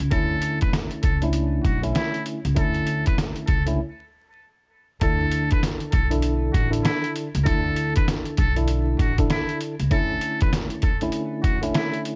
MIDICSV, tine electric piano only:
0, 0, Header, 1, 2, 480
1, 0, Start_track
1, 0, Tempo, 612245
1, 93, Time_signature, 4, 2, 24, 8
1, 9530, End_track
2, 0, Start_track
2, 0, Title_t, "Tine electric piano"
2, 0, Program_c, 0, 4
2, 85, Note_on_c, 0, 50, 97
2, 88, Note_on_c, 0, 57, 86
2, 92, Note_on_c, 0, 61, 88
2, 96, Note_on_c, 0, 64, 99
2, 873, Note_off_c, 0, 50, 0
2, 874, Note_off_c, 0, 57, 0
2, 876, Note_off_c, 0, 61, 0
2, 878, Note_off_c, 0, 64, 0
2, 956, Note_on_c, 0, 62, 93
2, 960, Note_on_c, 0, 57, 83
2, 964, Note_on_c, 0, 61, 78
2, 967, Note_on_c, 0, 64, 104
2, 1391, Note_off_c, 0, 62, 0
2, 1393, Note_off_c, 0, 57, 0
2, 1395, Note_off_c, 0, 61, 0
2, 1396, Note_off_c, 0, 64, 0
2, 1429, Note_on_c, 0, 50, 89
2, 1433, Note_on_c, 0, 57, 83
2, 1436, Note_on_c, 0, 61, 89
2, 1440, Note_on_c, 0, 64, 108
2, 1867, Note_off_c, 0, 50, 0
2, 1869, Note_off_c, 0, 57, 0
2, 1871, Note_off_c, 0, 61, 0
2, 1873, Note_off_c, 0, 64, 0
2, 1999, Note_on_c, 0, 50, 93
2, 2003, Note_on_c, 0, 57, 83
2, 2006, Note_on_c, 0, 61, 82
2, 2010, Note_on_c, 0, 64, 101
2, 2790, Note_off_c, 0, 50, 0
2, 2792, Note_off_c, 0, 57, 0
2, 2793, Note_off_c, 0, 61, 0
2, 2795, Note_off_c, 0, 64, 0
2, 2869, Note_on_c, 0, 50, 96
2, 2873, Note_on_c, 0, 57, 84
2, 2877, Note_on_c, 0, 61, 82
2, 2880, Note_on_c, 0, 64, 110
2, 2969, Note_off_c, 0, 50, 0
2, 2971, Note_off_c, 0, 57, 0
2, 2973, Note_off_c, 0, 61, 0
2, 2974, Note_off_c, 0, 64, 0
2, 3934, Note_on_c, 0, 50, 95
2, 3938, Note_on_c, 0, 62, 87
2, 3941, Note_on_c, 0, 64, 78
2, 3945, Note_on_c, 0, 69, 107
2, 4717, Note_off_c, 0, 50, 0
2, 4719, Note_off_c, 0, 62, 0
2, 4721, Note_off_c, 0, 64, 0
2, 4723, Note_off_c, 0, 69, 0
2, 4783, Note_on_c, 0, 50, 93
2, 4786, Note_on_c, 0, 62, 88
2, 4790, Note_on_c, 0, 64, 91
2, 4794, Note_on_c, 0, 69, 104
2, 5224, Note_off_c, 0, 50, 0
2, 5226, Note_off_c, 0, 62, 0
2, 5228, Note_off_c, 0, 64, 0
2, 5230, Note_off_c, 0, 69, 0
2, 5253, Note_on_c, 0, 50, 90
2, 5257, Note_on_c, 0, 62, 87
2, 5260, Note_on_c, 0, 64, 84
2, 5263, Note_on_c, 0, 69, 99
2, 5699, Note_off_c, 0, 50, 0
2, 5701, Note_off_c, 0, 62, 0
2, 5703, Note_off_c, 0, 64, 0
2, 5704, Note_off_c, 0, 69, 0
2, 5839, Note_on_c, 0, 50, 96
2, 5843, Note_on_c, 0, 62, 83
2, 5846, Note_on_c, 0, 64, 90
2, 5850, Note_on_c, 0, 69, 104
2, 6630, Note_off_c, 0, 50, 0
2, 6632, Note_off_c, 0, 62, 0
2, 6633, Note_off_c, 0, 64, 0
2, 6635, Note_off_c, 0, 69, 0
2, 6712, Note_on_c, 0, 50, 98
2, 6716, Note_on_c, 0, 62, 91
2, 6720, Note_on_c, 0, 64, 92
2, 6724, Note_on_c, 0, 69, 106
2, 7149, Note_off_c, 0, 50, 0
2, 7151, Note_off_c, 0, 62, 0
2, 7152, Note_off_c, 0, 64, 0
2, 7155, Note_off_c, 0, 69, 0
2, 7200, Note_on_c, 0, 50, 98
2, 7204, Note_on_c, 0, 62, 83
2, 7207, Note_on_c, 0, 64, 83
2, 7211, Note_on_c, 0, 69, 97
2, 7633, Note_off_c, 0, 50, 0
2, 7635, Note_off_c, 0, 62, 0
2, 7636, Note_off_c, 0, 64, 0
2, 7638, Note_off_c, 0, 69, 0
2, 7765, Note_on_c, 0, 50, 99
2, 7768, Note_on_c, 0, 57, 88
2, 7771, Note_on_c, 0, 61, 88
2, 7775, Note_on_c, 0, 64, 102
2, 8553, Note_off_c, 0, 50, 0
2, 8554, Note_off_c, 0, 57, 0
2, 8556, Note_off_c, 0, 61, 0
2, 8558, Note_off_c, 0, 64, 0
2, 8635, Note_on_c, 0, 50, 96
2, 8638, Note_on_c, 0, 57, 86
2, 8642, Note_on_c, 0, 61, 81
2, 8645, Note_on_c, 0, 64, 108
2, 9070, Note_off_c, 0, 50, 0
2, 9072, Note_off_c, 0, 57, 0
2, 9074, Note_off_c, 0, 61, 0
2, 9075, Note_off_c, 0, 64, 0
2, 9108, Note_on_c, 0, 50, 94
2, 9112, Note_on_c, 0, 57, 88
2, 9116, Note_on_c, 0, 61, 90
2, 9119, Note_on_c, 0, 64, 107
2, 9530, Note_off_c, 0, 50, 0
2, 9530, Note_off_c, 0, 57, 0
2, 9530, Note_off_c, 0, 61, 0
2, 9530, Note_off_c, 0, 64, 0
2, 9530, End_track
0, 0, End_of_file